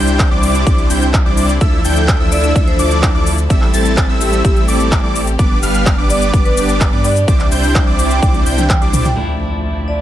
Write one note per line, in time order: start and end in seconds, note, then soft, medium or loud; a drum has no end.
0.00 0.29 C2 loud
0.00 1.59 C3 medium
0.00 0.28 G3 medium
0.00 1.59 C4 medium
0.00 0.28 D4 medium
0.00 3.46 D4 medium
0.00 0.28 E4 medium
0.00 3.46 E4 medium
0.00 1.57 G4 medium
0.00 0.28 C5 medium
0.00 0.28 G5 medium
0.00 0.28 G6 medium
0.08 closed hi-hat soft
0.08 shaker soft
0.19 kick loud
0.19 clap loud
0.19 closed hi-hat medium
0.19 shaker soft
0.31 0.64 C2 loud
0.31 0.64 G3 medium
0.31 0.64 D4 medium
0.31 0.64 E4 medium
0.31 0.64 C5 medium
0.31 0.64 D5 medium
0.31 0.64 D6 loud
0.43 open hi-hat loud
0.43 shaker medium
0.55 closed hi-hat medium
0.55 shaker soft
0.67 0.88 C2 loud
0.67 0.88 G3 medium
0.67 0.88 D4 medium
0.67 0.88 E4 medium
0.67 0.88 D5 medium
0.67 0.88 D6 medium
0.67 kick loud
0.67 closed hi-hat medium
0.67 shaker soft
0.78 closed hi-hat soft
0.90 1.23 C2 loud
0.90 1.07 G3 medium
0.90 1.07 D4 medium
0.90 1.07 E4 medium
0.90 1.07 C5 medium
0.90 1.07 G5 medium
0.90 1.07 G6 medium
0.90 open hi-hat loud
0.90 shaker medium
1.02 closed hi-hat medium
1.02 shaker soft
1.14 kick loud
1.14 clap loud
1.14 closed hi-hat medium
1.14 shaker soft
1.26 1.59 C2 medium
1.26 1.53 G3 medium
1.26 1.53 D4 medium
1.26 1.53 E4 medium
1.26 1.53 C5 medium
1.26 1.53 D5 medium
1.26 1.53 D6 medium
1.37 open hi-hat loud
1.37 shaker medium
1.49 closed hi-hat medium
1.49 shaker soft
1.61 1.82 D2 medium
1.61 3.48 D3 medium
1.61 1.81 F3 medium
1.61 3.48 F3 medium
1.61 1.81 D4 medium
1.61 1.81 E4 medium
1.61 1.81 A4 medium
1.61 3.48 A4 medium
1.61 1.81 E5 loud
1.61 1.81 E6 medium
1.61 kick loud
1.61 closed hi-hat medium
1.61 shaker soft
1.85 2.18 D2 loud
1.85 2.17 F3 medium
1.85 2.17 D4 medium
1.85 2.17 E4 medium
1.85 2.17 A4 medium
1.85 2.17 G5 medium
1.85 2.17 G6 loud
1.85 open hi-hat loud
1.85 shaker medium
1.96 closed hi-hat soft
1.96 shaker soft
2.08 kick loud
2.08 clap loud
2.08 closed hi-hat medium
2.08 shaker soft
2.20 2.53 D2 loud
2.20 2.53 F3 medium
2.20 2.53 D4 medium
2.20 2.53 E4 medium
2.20 2.53 A4 medium
2.20 2.53 E5 medium
2.20 2.53 E6 medium
2.32 2.51 D5 medium
2.32 open hi-hat loud
2.32 shaker medium
2.44 closed hi-hat medium
2.44 shaker soft
2.56 2.77 D2 loud
2.56 2.77 F3 medium
2.56 2.77 D4 medium
2.56 2.77 E4 medium
2.56 2.77 A4 medium
2.56 2.77 E5 medium
2.56 kick loud
2.56 closed hi-hat medium
2.56 shaker soft
2.67 2.86 C5 medium
2.67 closed hi-hat soft
2.79 3.12 D2 loud
2.79 3.12 F3 medium
2.79 3.12 D4 medium
2.79 3.12 E4 medium
2.79 3.12 A4 medium
2.79 3.12 D5 medium
2.79 3.12 D6 medium
2.79 open hi-hat loud
2.79 shaker medium
2.91 closed hi-hat medium
2.91 shaker soft
3.03 kick loud
3.03 clap loud
3.03 closed hi-hat medium
3.03 shaker soft
3.15 3.48 D2 loud
3.15 3.32 F3 medium
3.15 3.32 D4 medium
3.15 3.32 E4 medium
3.15 3.32 A4 medium
3.15 3.32 D5 medium
3.15 3.32 D6 medium
3.27 open hi-hat loud
3.27 shaker medium
3.38 closed hi-hat medium
3.38 shaker soft
3.50 3.71 A1 medium
3.50 3.70 G3 medium
3.50 5.37 A3 medium
3.50 5.37 C4 medium
3.50 3.70 C4 medium
3.50 3.70 E4 medium
3.50 9.13 G4 medium
3.50 3.70 A4 medium
3.50 3.70 E5 medium
3.50 3.70 E6 medium
3.50 kick loud
3.50 closed hi-hat medium
3.50 shaker soft
3.62 clap soft
3.74 4.07 A1 loud
3.74 4.06 G3 medium
3.74 4.06 C4 medium
3.74 4.06 E4 medium
3.74 3.93 A4 loud
3.74 4.06 A4 medium
3.74 4.06 A5 medium
3.74 4.06 A6 loud
3.74 open hi-hat loud
3.74 shaker medium
3.86 closed hi-hat medium
3.86 shaker soft
3.97 kick loud
3.97 clap loud
3.97 closed hi-hat medium
3.97 shaker soft
4.09 4.42 A1 loud
4.09 4.42 G3 medium
4.09 4.42 C4 medium
4.09 4.42 E4 medium
4.09 4.42 A4 medium
4.09 4.42 E5 medium
4.09 4.42 E6 medium
4.21 4.56 G4 medium
4.21 open hi-hat loud
4.21 shaker medium
4.33 closed hi-hat medium
4.33 shaker medium
4.45 4.66 A1 loud
4.45 4.66 G3 medium
4.45 4.66 C4 medium
4.45 4.66 E4 medium
4.45 4.66 A4 medium
4.45 4.66 E5 medium
4.45 4.66 E6 medium
4.45 kick loud
4.45 closed hi-hat medium
4.45 shaker soft
4.56 closed hi-hat soft
4.68 5.01 A1 loud
4.68 5.01 G3 medium
4.68 5.01 C4 medium
4.68 5.01 E4 medium
4.68 5.01 A4 medium
4.68 5.01 D5 medium
4.68 5.01 D6 medium
4.68 open hi-hat loud
4.68 shaker medium
4.80 closed hi-hat medium
4.80 shaker soft
4.92 kick loud
4.92 clap loud
4.92 closed hi-hat medium
4.92 shaker soft
5.04 5.37 A1 medium
5.04 5.21 G3 medium
5.04 5.21 C4 medium
5.04 5.21 E4 medium
5.04 5.21 A4 medium
5.04 5.21 D5 medium
5.04 5.21 D6 medium
5.16 open hi-hat loud
5.16 shaker medium
5.27 closed hi-hat medium
5.27 shaker soft
5.39 5.60 G1 loud
5.39 5.59 G3 medium
5.39 5.59 B3 medium
5.39 7.26 B3 medium
5.39 5.59 D4 medium
5.39 9.13 D4 medium
5.39 5.59 B4 medium
5.39 5.59 D5 medium
5.39 5.59 D6 medium
5.39 kick loud
5.39 closed hi-hat medium
5.39 shaker soft
5.63 5.96 G1 loud
5.63 5.95 G3 medium
5.63 5.95 B3 medium
5.63 5.95 D4 medium
5.63 5.95 B4 medium
5.63 5.95 F5 medium
5.63 5.95 F6 medium
5.63 open hi-hat loud
5.63 shaker medium
5.75 closed hi-hat medium
5.75 shaker soft
5.86 kick loud
5.86 clap loud
5.86 closed hi-hat medium
5.86 shaker soft
5.98 6.31 G1 loud
5.98 6.31 G3 medium
5.98 6.31 B3 medium
5.98 6.31 D4 medium
5.98 6.31 B4 medium
5.98 6.31 D5 loud
5.98 6.31 D6 loud
6.10 6.29 D5 loud
6.10 open hi-hat loud
6.10 shaker medium
6.22 closed hi-hat medium
6.22 shaker soft
6.33 6.55 G1 loud
6.33 6.55 G3 medium
6.33 6.55 B3 medium
6.33 6.55 D4 medium
6.33 6.55 B4 medium
6.33 6.55 D6 medium
6.33 kick loud
6.33 closed hi-hat medium
6.33 shaker soft
6.45 6.64 B4 medium
6.45 closed hi-hat soft
6.57 6.90 G1 medium
6.57 6.90 G3 medium
6.57 6.90 B3 medium
6.57 6.90 D4 medium
6.57 6.90 B4 medium
6.57 6.90 D5 loud
6.57 6.90 D6 medium
6.57 open hi-hat loud
6.57 shaker medium
6.69 closed hi-hat medium
6.69 shaker soft
6.81 kick loud
6.81 clap loud
6.81 closed hi-hat medium
6.81 shaker soft
6.93 7.26 G2 medium
6.93 7.10 G3 medium
6.93 7.10 B3 medium
6.93 7.10 D4 medium
6.93 7.10 B4 medium
6.93 7.10 D5 medium
6.93 7.10 D6 medium
7.04 7.23 D5 loud
7.04 open hi-hat loud
7.04 shaker medium
7.16 closed hi-hat medium
7.16 shaker soft
7.28 7.49 C2 loud
7.28 9.15 C3 medium
7.28 7.48 G3 medium
7.28 9.15 C4 medium
7.28 7.48 D4 medium
7.28 7.48 E4 medium
7.28 9.15 E4 medium
7.28 7.48 C5 medium
7.28 7.48 D5 medium
7.28 7.48 D6 medium
7.28 kick loud
7.28 closed hi-hat medium
7.28 shaker soft
7.40 clap soft
7.40 closed hi-hat soft
7.52 7.85 C2 loud
7.52 7.84 G3 medium
7.52 7.84 D4 medium
7.52 7.84 E4 medium
7.52 7.84 C5 medium
7.52 7.84 G5 medium
7.52 7.84 G6 medium
7.52 open hi-hat loud
7.52 shaker medium
7.63 open hi-hat medium
7.63 shaker soft
7.75 kick loud
7.75 clap loud
7.75 closed hi-hat medium
7.75 shaker soft
7.87 8.20 C2 loud
7.87 8.20 G3 medium
7.87 8.20 D4 medium
7.87 8.20 E4 medium
7.87 8.20 C5 medium
7.87 8.20 D5 loud
7.87 8.20 D6 medium
7.99 open hi-hat loud
7.99 shaker medium
8.11 8.30 G5 medium
8.11 closed hi-hat medium
8.11 shaker soft
8.22 8.44 C2 medium
8.22 8.44 G3 medium
8.22 8.44 D4 medium
8.22 8.44 E4 medium
8.22 8.44 C5 medium
8.22 8.44 D5 medium
8.22 8.44 D6 medium
8.22 kick loud
8.22 closed hi-hat medium
8.22 high tom medium
8.22 shaker soft
8.34 closed hi-hat soft
8.34 high tom medium
8.46 8.79 C2 medium
8.46 8.63 G3 medium
8.46 8.63 D4 medium
8.46 8.63 E4 medium
8.46 8.63 C5 medium
8.46 8.63 G5 medium
8.46 8.63 G6 medium
8.46 open hi-hat loud
8.46 shaker medium
8.58 8.77 G5 medium
8.58 closed hi-hat medium
8.58 mid tom medium
8.58 shaker soft
8.70 kick loud
8.70 clap loud
8.70 closed hi-hat medium
8.70 mid tom medium
8.70 shaker soft
8.82 9.15 C2 medium
8.82 9.09 G3 medium
8.82 9.09 D4 medium
8.82 9.09 E4 medium
8.82 9.09 C5 medium
8.82 9.09 D5 medium
8.82 9.09 D6 medium
8.82 closed hi-hat soft
8.94 mid tom loud
8.94 open hi-hat loud
8.94 shaker medium
9.05 9.17 G5 medium
9.05 closed hi-hat medium
9.05 mid tom loud
9.05 shaker soft
9.16 10.01 D2 medium
9.16 10.01 F3 medium
9.16 10.01 A3 medium
9.16 10.01 D4 medium
9.16 10.01 E4 medium
9.16 10.01 D5 medium
9.16 10.01 E5 medium
9.16 10.01 A5 medium
9.16 impact medium
9.88 10.01 D5 medium